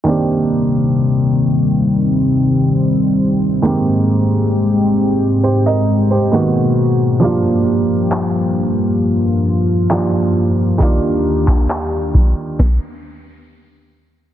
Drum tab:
CP |----------------|----------------|----x-------x---|---xx-----------|
SD |----------------|----------------|----------------|--------o-------|
BD |----------------|----------------|----------------|o--o--o-o-------|